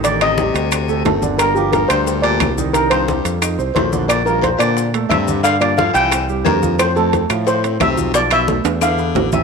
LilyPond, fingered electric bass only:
\new Staff \with { instrumentName = "Fingered electric bass" } { \clef bass \time 4/4 \key f \major \tempo 4 = 178 a,,4. d,4. g,,4~ | g,,4. d,4. c,4~ | c,4. f,4 c,8 bes,,4~ | bes,,4. bes,4. g,4~ |
g,4. c,4. f,4~ | f,4. a,4. b,,4~ | b,,4. e,4. a,,4 | }